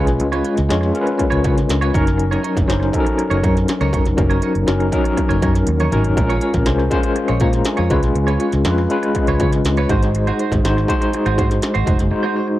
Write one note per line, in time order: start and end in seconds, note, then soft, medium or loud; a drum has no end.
0.00 0.55 G#3 medium
0.00 0.55 C#4 medium
0.00 0.55 F4 medium
0.00 0.56 B4 medium
0.07 0.21 B1 medium
0.07 muted clean electric guitar stroke soft
0.07 snare soft
0.07 closed hi-hat soft
0.19 0.41 C#2 medium
0.19 muted clean electric guitar stroke soft
0.19 closed hi-hat medium
0.32 0.43 F4 medium
0.32 0.44 B4 medium
0.32 0.44 C#5 medium
0.32 closed hi-hat soft
0.44 0.56 F4 soft
0.44 0.55 B4 soft
0.44 0.55 C#5 soft
0.44 closed hi-hat medium
0.56 0.68 C#2 medium
0.56 muted clean electric guitar stroke soft
0.56 snare soft
0.56 closed hi-hat soft
0.69 0.91 F2 medium
0.69 0.86 G#3 medium
0.69 0.87 C#4 medium
0.69 0.87 F4 medium
0.69 0.87 C#5 medium
0.69 muted clean electric guitar stroke soft
0.69 snare loud
0.69 closed hi-hat medium
0.81 muted clean electric guitar stroke soft
0.81 snare soft
0.94 1.62 G#3 medium
0.94 1.63 C#4 medium
0.94 1.63 F4 medium
0.94 1.01 A#4 medium
0.94 closed hi-hat medium
1.01 1.66 B4 medium
1.06 muted clean electric guitar stroke soft
1.06 closed hi-hat soft
1.18 muted clean electric guitar stroke soft
1.18 kick medium
1.18 closed hi-hat medium
1.30 1.43 C#2 medium
1.30 1.42 F4 medium
1.30 1.43 B4 medium
1.30 1.43 C#5 medium
1.30 closed hi-hat soft
1.44 1.65 C#3 loud
1.44 1.55 F4 medium
1.44 1.55 B4 medium
1.44 1.56 C#5 medium
1.44 kick medium
1.44 closed hi-hat medium
1.57 muted clean electric guitar stroke soft
1.57 snare soft
1.57 closed hi-hat soft
1.69 1.90 C#2 medium
1.69 muted clean electric guitar stroke soft
1.69 snare loud
1.69 closed hi-hat loud
1.81 1.93 F4 medium
1.81 1.93 B4 medium
1.81 1.93 C#5 medium
1.81 closed hi-hat soft
1.93 2.35 F#1 medium
1.93 2.54 F#3 medium
1.93 2.54 C#4 medium
1.93 2.05 D#4 medium
1.93 2.54 D#4 medium
1.93 2.05 A#4 medium
1.93 2.54 A#4 loud
1.93 2.05 C#5 medium
1.93 kick medium
1.93 closed hi-hat medium
2.06 muted clean electric guitar stroke soft
2.06 snare soft
2.06 closed hi-hat soft
2.18 muted clean electric guitar stroke soft
2.18 closed hi-hat medium
2.31 2.42 D#4 medium
2.31 2.42 A#4 medium
2.31 2.43 C#5 medium
2.31 closed hi-hat soft
2.43 2.55 D#4 medium
2.43 2.55 A#4 medium
2.43 2.54 C#5 medium
2.43 closed hi-hat medium
2.55 2.67 F#1 medium
2.55 muted clean electric guitar stroke soft
2.55 kick medium
2.55 snare soft
2.55 closed hi-hat soft
2.67 2.89 F#1 medium
2.67 2.85 F#3 medium
2.67 2.85 C#4 medium
2.67 2.86 D#4 medium
2.67 2.86 C5 medium
2.67 muted clean electric guitar stroke soft
2.67 snare loud
2.67 closed hi-hat medium
2.80 muted clean electric guitar stroke soft
2.80 snare soft
2.92 3.61 F#3 medium
2.92 3.61 C#4 medium
2.92 3.61 D#4 medium
2.92 3.00 A4 medium
2.92 kick medium
2.92 closed hi-hat medium
3.00 3.65 A#4 medium
3.05 muted clean electric guitar stroke soft
3.05 closed hi-hat soft
3.18 muted clean electric guitar stroke soft
3.18 closed hi-hat medium
3.30 3.41 F#1 medium
3.30 3.42 D#4 medium
3.30 3.43 A#4 medium
3.30 3.43 C#5 medium
3.30 closed hi-hat soft
3.43 3.64 F#2 medium
3.43 3.55 D#4 medium
3.43 3.55 A#4 medium
3.43 3.54 C#5 medium
3.43 kick medium
3.43 closed hi-hat medium
3.56 muted clean electric guitar stroke soft
3.56 snare soft
3.56 closed hi-hat soft
3.68 muted clean electric guitar stroke soft
3.68 snare loud
3.68 closed hi-hat medium
3.81 3.91 C#2 loud
3.81 3.91 D#4 medium
3.81 3.92 A#4 medium
3.81 3.93 C#5 medium
3.81 closed hi-hat soft
3.93 4.03 F#1 medium
3.93 4.04 D#4 medium
3.93 4.04 A#4 medium
3.93 4.04 C#5 medium
3.93 kick medium
3.93 closed hi-hat medium
4.05 4.16 F1 medium
4.05 muted clean electric guitar stroke soft
4.05 snare soft
4.05 closed hi-hat soft
4.17 4.39 F#1 medium
4.17 4.51 F#3 medium
4.17 4.52 C#4 medium
4.17 4.52 D#4 medium
4.17 4.52 A#4 medium
4.17 muted clean electric guitar stroke soft
4.17 kick loud
4.17 closed hi-hat medium
4.30 4.41 D#4 medium
4.30 4.42 A#4 medium
4.30 4.42 C#5 medium
4.30 closed hi-hat soft
4.42 4.54 D#4 soft
4.42 4.53 A#4 medium
4.42 4.53 C#5 medium
4.42 closed hi-hat medium
4.54 4.66 F#1 medium
4.54 muted clean electric guitar stroke soft
4.54 closed hi-hat soft
4.67 4.89 F#1 medium
4.67 4.85 F#3 medium
4.67 4.85 C#4 medium
4.67 4.85 D#4 medium
4.67 4.85 A#4 medium
4.67 muted clean electric guitar stroke soft
4.67 snare loud
4.67 closed hi-hat medium
4.80 muted clean electric guitar stroke soft
4.80 closed hi-hat soft
4.92 5.60 F#3 medium
4.92 5.60 C#4 medium
4.92 5.60 D#4 medium
4.92 5.61 A#4 medium
4.92 kick medium
4.92 closed hi-hat medium
5.04 muted clean electric guitar stroke soft
5.04 closed hi-hat soft
5.17 muted clean electric guitar stroke soft
5.17 kick medium
5.17 closed hi-hat medium
5.29 5.40 F#1 medium
5.29 5.41 D#4 medium
5.29 5.41 A#4 medium
5.29 5.42 C#5 medium
5.29 closed hi-hat soft
5.42 5.63 F#2 loud
5.42 5.53 D#4 medium
5.42 5.54 A#4 medium
5.42 5.53 C#5 medium
5.42 kick medium
5.42 closed hi-hat medium
5.55 muted clean electric guitar stroke soft
5.55 snare soft
5.55 closed hi-hat medium
5.67 5.88 D#2 medium
5.67 muted clean electric guitar stroke soft
5.67 closed hi-hat loud
5.67 high tom medium
5.80 5.90 D#4 medium
5.80 5.91 A#4 medium
5.80 5.91 C#5 medium
5.80 closed hi-hat soft
5.80 mid tom medium
5.92 6.13 G#1 medium
5.92 6.09 F#3 medium
5.92 6.09 C#4 medium
5.92 6.03 D#4 medium
5.92 6.09 D#4 medium
5.92 6.04 A#4 medium
5.92 6.09 A#4 medium
5.92 6.04 C#5 medium
5.92 closed hi-hat medium
5.92 mid tom medium
6.04 muted clean electric guitar stroke soft
6.04 closed hi-hat soft
6.04 floor tom medium
6.16 6.38 A#1 loud
6.16 6.50 G#3 medium
6.16 6.51 C#4 medium
6.16 6.51 F4 medium
6.16 6.51 A#4 medium
6.16 muted clean electric guitar stroke soft
6.16 kick loud
6.16 closed hi-hat medium
6.29 6.41 F4 medium
6.29 6.41 G#4 medium
6.29 6.42 C#5 medium
6.29 closed hi-hat soft
6.41 6.53 F4 soft
6.41 6.53 G#4 medium
6.41 6.53 C#5 medium
6.41 closed hi-hat medium
6.54 6.65 A#1 medium
6.54 muted clean electric guitar stroke soft
6.54 kick medium
6.54 snare soft
6.54 closed hi-hat soft
6.66 6.88 C2 medium
6.66 6.83 G#3 medium
6.66 6.84 C#4 medium
6.66 6.84 F4 medium
6.66 6.84 C5 medium
6.66 muted clean electric guitar stroke soft
6.66 snare loud
6.66 closed hi-hat medium
6.79 muted clean electric guitar stroke soft
6.79 snare soft
6.90 7.59 G#3 medium
6.90 7.59 C#4 medium
6.90 7.59 F4 medium
6.90 7.15 C5 loud
6.90 kick medium
6.90 closed hi-hat medium
7.03 muted clean electric guitar stroke soft
7.03 closed hi-hat medium
7.15 7.40 C5 soft
7.15 muted clean electric guitar stroke soft
7.15 closed hi-hat medium
7.28 7.39 A#1 medium
7.28 7.39 F4 medium
7.28 7.40 G#4 medium
7.28 7.40 C#5 medium
7.28 closed hi-hat soft
7.40 7.61 A#2 medium
7.40 7.52 F4 medium
7.40 7.52 G#4 medium
7.40 7.51 C#5 medium
7.40 7.65 F5 medium
7.40 7.65 A#5 medium
7.40 kick medium
7.40 closed hi-hat medium
7.52 muted clean electric guitar stroke medium
7.52 snare soft
7.52 closed hi-hat medium
7.65 8.14 D#5 medium
7.65 8.14 G#5 medium
7.65 muted clean electric guitar stroke soft
7.65 snare loud
7.65 closed hi-hat loud
7.77 7.89 F2 medium
7.77 7.89 F4 medium
7.77 7.90 G#4 medium
7.77 7.90 C#5 medium
7.77 closed hi-hat soft
7.90 8.04 C#2 medium
7.90 8.50 G#3 medium
7.90 8.50 C#4 medium
7.90 8.02 F4 soft
7.90 8.50 F4 medium
7.90 8.02 B4 medium
7.90 8.51 B4 medium
7.90 8.01 C#5 medium
7.90 kick loud
7.90 closed hi-hat medium
8.03 8.14 B1 medium
8.03 muted clean electric guitar stroke soft
8.03 snare soft
8.03 closed hi-hat soft
8.15 8.36 C#2 loud
8.15 muted clean electric guitar stroke soft
8.15 closed hi-hat medium
8.27 8.38 F4 medium
8.27 8.38 B4 medium
8.27 8.39 C#5 medium
8.27 closed hi-hat soft
8.39 8.51 F4 soft
8.39 8.51 B4 soft
8.39 8.52 C#5 medium
8.39 closed hi-hat medium
8.52 8.63 C#2 medium
8.52 muted clean electric guitar stroke soft
8.52 snare soft
8.52 closed hi-hat soft
8.65 8.86 F2 medium
8.65 8.82 G#3 medium
8.65 8.82 C#4 medium
8.65 8.82 F4 medium
8.65 8.83 B4 medium
8.65 muted clean electric guitar stroke soft
8.65 snare loud
8.65 closed hi-hat medium
8.78 muted clean electric guitar stroke soft
8.78 snare soft
8.90 9.58 G#3 medium
8.90 9.58 C#4 medium
8.90 9.58 F4 medium
8.90 9.58 B4 loud
8.90 closed hi-hat medium
9.03 muted clean electric guitar stroke soft
9.03 closed hi-hat soft
9.15 muted clean electric guitar stroke soft
9.15 kick medium
9.15 closed hi-hat medium
9.27 9.38 C#2 medium
9.27 9.39 F4 medium
9.27 9.39 B4 medium
9.27 9.40 C#5 medium
9.27 closed hi-hat soft
9.40 9.61 C#3 loud
9.40 9.51 F4 medium
9.40 9.51 B4 medium
9.40 9.51 C#5 medium
9.40 kick medium
9.40 closed hi-hat medium
9.53 muted clean electric guitar stroke medium
9.53 snare soft
9.53 closed hi-hat medium
9.64 9.85 C#2 medium
9.64 muted clean electric guitar stroke soft
9.64 snare loud
9.64 closed hi-hat loud
9.77 9.89 F4 medium
9.77 9.89 B4 medium
9.77 9.90 C#5 medium
9.77 closed hi-hat soft
9.89 10.30 G#1 loud
9.89 10.49 G#3 medium
9.89 10.01 D#4 medium
9.89 10.49 D#4 medium
9.89 10.01 F#4 medium
9.89 10.49 F#4 medium
9.89 10.01 C5 medium
9.89 10.50 C5 medium
9.89 kick loud
9.89 closed hi-hat medium
10.03 muted clean electric guitar stroke soft
10.03 snare soft
10.03 closed hi-hat soft
10.15 muted clean electric guitar stroke soft
10.15 closed hi-hat medium
10.27 10.38 D#4 medium
10.27 10.39 F#4 medium
10.27 10.39 C5 medium
10.27 closed hi-hat soft
10.39 10.50 D#4 medium
10.39 10.51 F#4 medium
10.39 10.51 C5 medium
10.39 closed hi-hat medium
10.52 10.62 G#1 medium
10.52 muted clean electric guitar stroke soft
10.52 kick medium
10.52 snare soft
10.52 closed hi-hat soft
10.64 10.84 G#1 medium
10.64 10.81 G#3 medium
10.64 10.81 D#4 medium
10.64 10.81 F#4 medium
10.64 10.81 C5 medium
10.64 muted clean electric guitar stroke soft
10.64 snare medium
10.64 closed hi-hat medium
10.77 muted clean electric guitar stroke soft
10.77 snare soft
10.88 11.56 G#3 medium
10.88 11.56 D#4 medium
10.88 11.56 F#4 medium
10.88 11.56 C5 medium
10.88 kick medium
10.88 closed hi-hat medium
11.01 muted clean electric guitar stroke soft
11.01 closed hi-hat soft
11.13 muted clean electric guitar stroke soft
11.13 closed hi-hat medium
11.26 11.36 G#1 medium
11.26 11.37 D#4 medium
11.26 11.37 F#4 medium
11.26 11.38 C5 medium
11.26 closed hi-hat soft
11.38 11.58 G#2 medium
11.38 11.49 D#4 medium
11.38 11.49 F#4 medium
11.38 11.49 C5 medium
11.38 kick medium
11.38 closed hi-hat medium
11.50 muted clean electric guitar stroke soft
11.50 snare soft
11.50 closed hi-hat soft
11.62 muted clean electric guitar stroke soft
11.62 snare loud
11.62 closed hi-hat medium
11.74 11.86 G#1 medium
11.74 11.85 D#4 medium
11.74 11.85 F#4 medium
11.74 11.86 C5 medium
11.74 closed hi-hat soft
11.86 11.98 F1 medium
11.86 11.98 D#4 medium
11.86 11.98 F#4 medium
11.86 11.98 C5 medium
11.86 kick medium
11.86 closed hi-hat medium
11.99 12.11 F#1 medium
11.99 snare soft
11.99 closed hi-hat soft
12.11 12.45 G#3 medium
12.11 12.46 D#4 medium
12.11 12.46 F#4 medium
12.11 12.46 C5 medium
12.11 muted clean electric guitar stroke soft
12.23 12.34 D#4 medium
12.23 12.35 F#4 medium
12.23 12.35 C5 medium
12.35 12.47 D#4 soft
12.35 12.47 F#4 soft
12.35 12.47 C5 medium
12.48 muted clean electric guitar stroke soft